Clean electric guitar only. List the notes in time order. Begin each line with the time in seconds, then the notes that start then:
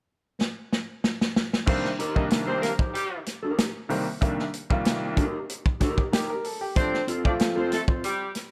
1.99 D#4 G4 A#4
2.48 D#4 G4 A#4
2.79 D#4 G4 C5
3.43 D#4 G4 A#4
5.16 D#4 G4 A#4
5.80 D#4 G4 A#4
6.12 D#4 G4 A#4
7.07 C4 F4 A4
7.56 C4 F4 A4
7.88 C4 F4 C5